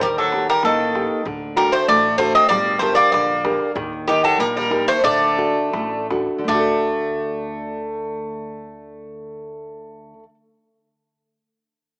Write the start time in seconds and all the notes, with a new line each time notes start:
0.00 D#2 D#3 G3 A#4, darbuka dum
0.18 F#3 A4
0.32 D#4 G4, darbuka tek
0.48 G3 A#4, darbuka tek
0.63 A1 D#3 A#3 A4, darbuka tek
0.79 darbuka tek
0.95 D#4 G4, darbuka tek
1.25 D2 D3, darbuka dum
1.42 darbuka tek
1.56 G3 D4 F#4 A4 A#4, darbuka tek
1.72 A3 C5
1.88 A1 A3 D5, darbuka tek
2.18 A3 D4 F#4 A4 C5, darbuka tek
2.35 C4 D#5
2.49 G1 G3 A#3 D5, darbuka dum
2.67 darbuka tek
2.79 A3 D4 G4 A#4 C5, darbuka tek
2.95 A#3 D5
3.12 A#1 D3 A#3 D5, darbuka tek
3.45 D4 G4 A#4, darbuka tek
3.76 D#2 D#3, darbuka dum
3.93 darbuka tek
4.07 D#3 D#4 G4 A#4, darbuka tek
4.24 F#3 A4
4.38 A#1 G3 A#3 A#4, darbuka tek
4.57 G3 A#4
4.70 D#4 G4 A#4, darbuka tek
4.88 A3 C5
5.04 D2 D3 A3 D5, darbuka dum
5.38 D4 F#4 A4, darbuka tek
5.73 A1 A3, darbuka tek
6.10 D4 F#4 A4, darbuka tek
6.38 D3
6.44 A3 D5
6.48 D2 A3 D4, darbuka dum
6.54 F#4
6.59 A4